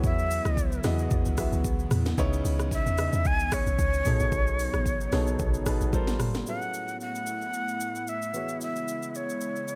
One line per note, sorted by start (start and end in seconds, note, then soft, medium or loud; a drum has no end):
0.00 0.41 E2 loud
0.00 4.02 C#3 medium
0.00 0.63 E3 medium
0.00 2.14 F#3 medium
0.00 0.63 B3 medium
0.00 4.02 B3 medium
0.00 2.14 E4 loud
0.00 0.64 F#4 medium
0.00 0.64 G#4 medium
0.00 0.64 C#5 medium
0.00 kick loud
0.00 shaker medium
0.05 0.81 E5 loud
0.19 shaker medium
0.31 open hi-hat soft
0.31 shaker medium
0.45 0.80 C#2 medium
0.45 cross-stick medium
0.45 shaker medium
0.57 kick medium
0.57 shaker medium
0.72 shaker medium
0.84 1.08 E2 loud
0.84 1.28 E3 medium
0.84 1.28 B3 medium
0.84 1.28 F#4 medium
0.84 1.29 G#4 medium
0.84 1.29 D#5 loud
0.84 cross-stick loud
0.84 snare medium
0.84 open hi-hat medium
0.84 shaker medium
0.99 shaker medium
1.11 1.24 E2 loud
1.11 kick loud
1.11 shaker medium
1.25 1.49 C#2 medium
1.25 shaker medium
1.38 2.03 E3 medium
1.38 2.03 B3 medium
1.38 2.03 F#4 medium
1.38 2.04 G#4 medium
1.38 2.04 E5 medium
1.38 kick loud
1.38 cross-stick loud
1.38 open hi-hat medium
1.38 shaker loud
1.52 1.87 C#2 loud
1.52 shaker medium
1.64 kick loud
1.64 shaker medium
1.79 shaker medium
1.91 2.15 E2 loud
1.91 cross-stick medium
1.91 mid tom loud
1.91 open hi-hat medium
1.91 shaker loud
2.06 snare medium
2.06 shaker medium
2.18 2.42 C#2 loud
2.18 2.83 C#3 loud
2.18 4.04 E3 medium
2.18 2.84 B3 loud
2.18 4.04 C#4 loud
2.18 2.84 D#4 loud
2.18 2.84 E4 loud
2.18 2.84 C#5 loud
2.18 kick loud
2.18 shaker medium
2.33 shaker medium
2.45 2.82 C#2 loud
2.45 open hi-hat soft
2.45 shaker medium
2.60 cross-stick medium
2.60 shaker medium
2.71 3.28 E5 loud
2.71 kick medium
2.71 shaker medium
2.86 3.10 E2 medium
2.86 shaker medium
2.98 3.85 C#3 medium
2.98 3.85 B3 medium
2.98 3.85 D#4 medium
2.98 3.85 E4 medium
2.98 3.85 D#5 medium
2.98 cross-stick loud
2.98 open hi-hat medium
2.98 shaker medium
3.13 3.27 E2 loud
3.13 shaker medium
3.25 3.62 C#2 loud
3.25 3.55 G#5 loud
3.25 kick loud
3.25 shaker medium
3.40 shaker medium
3.52 5.94 C#5 loud
3.52 kick loud
3.52 cross-stick loud
3.52 open hi-hat medium
3.52 shaker loud
3.67 3.77 B1 loud
3.67 shaker medium
3.79 4.03 C#2 loud
3.79 kick loud
3.79 shaker medium
3.93 shaker medium
4.05 4.19 B1 loud
4.05 4.92 B2 medium
4.05 5.91 C#3 medium
4.05 5.91 F#3 medium
4.05 6.44 B3 medium
4.05 4.92 B3 medium
4.05 5.91 D#4 medium
4.05 4.92 D#4 medium
4.05 4.92 G#4 medium
4.05 4.92 A4 medium
4.05 4.93 C#5 medium
4.05 mid tom loud
4.05 open hi-hat medium
4.05 shaker loud
4.20 4.31 A1 loud
4.20 shaker medium
4.32 4.69 B1 loud
4.32 kick loud
4.32 shaker medium
4.47 shaker medium
4.59 open hi-hat soft
4.59 shaker medium
4.74 5.08 A1 medium
4.74 cross-stick medium
4.74 shaker medium
4.86 kick medium
4.86 shaker medium
5.01 shaker medium
5.12 5.36 B1 medium
5.12 5.57 B2 medium
5.12 5.57 B3 medium
5.12 5.57 D#4 medium
5.12 5.57 G#4 medium
5.12 5.57 A4 medium
5.12 5.57 C#5 loud
5.12 cross-stick medium
5.12 snare medium
5.12 open hi-hat medium
5.12 shaker medium
5.27 shaker medium
5.39 5.56 B1 loud
5.39 kick loud
5.39 shaker medium
5.54 5.78 A1 loud
5.54 shaker medium
5.66 5.93 B2 medium
5.66 5.93 B3 medium
5.66 5.93 D#4 medium
5.66 5.93 G#4 medium
5.66 5.92 A4 medium
5.66 5.94 B4 medium
5.66 kick loud
5.66 cross-stick loud
5.66 open hi-hat medium
5.66 shaker loud
5.81 6.21 A1 loud
5.81 shaker medium
5.93 6.37 G3 loud
5.93 6.37 F4 medium
5.93 6.37 A4 medium
5.93 6.38 A#4 medium
5.93 6.38 C5 loud
5.93 kick loud
5.93 shaker medium
6.07 snare medium
6.07 shaker medium
6.20 6.44 G1 loud
6.20 cross-stick medium
6.20 mid tom loud
6.20 open hi-hat medium
6.20 shaker loud
6.34 snare medium
6.34 shaker medium
6.46 8.32 A2 medium
6.46 8.30 F#3 medium
6.46 8.32 A3 medium
6.46 8.32 B3 medium
6.46 8.30 C#4 medium
6.46 9.75 E4 medium
6.46 8.31 E4 medium
6.46 8.31 G#4 medium
6.46 8.31 A4 medium
6.46 8.31 B4 medium
6.46 6.97 F#5 loud
6.46 shaker medium
6.62 shaker medium
6.74 shaker medium
6.88 shaker soft
7.01 8.11 F#5 loud
7.01 shaker medium
7.15 shaker medium
7.27 shaker medium
7.41 shaker medium
7.54 shaker medium
7.68 shaker medium
7.80 shaker loud
7.95 shaker medium
8.07 8.62 E5 medium
8.07 shaker medium
8.22 shaker soft
8.33 9.75 C#3 medium
8.33 9.75 E3 medium
8.33 9.75 G#3 medium
8.33 9.75 B3 medium
8.33 9.75 F#4 medium
8.33 9.75 G#4 medium
8.33 9.75 C#5 medium
8.33 shaker medium
8.49 shaker medium
8.61 9.18 E5 medium
8.61 shaker medium
8.76 shaker medium
8.88 shaker medium
9.03 shaker medium
9.15 9.75 C#5 medium
9.15 shaker medium
9.29 shaker medium
9.41 shaker medium
9.56 shaker medium
9.68 shaker medium